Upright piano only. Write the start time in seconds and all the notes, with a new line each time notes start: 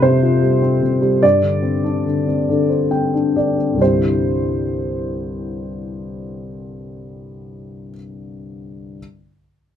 Already playing: F2 C3 G3 C4
0.02 C3
0.22 F4
0.42 G3
0.62 C4
0.82 C3
1.01 G3
1.22 G2
1.41 D3
1.62 C4
1.84 D4
2.06 D3
2.27 C4
2.49 D3
2.69 C5
2.91 C4 G5
3.14 D4
3.36 D3 D5
3.58 C4
3.74 C2 G2
3.79 D3 G3
3.84 C4 E4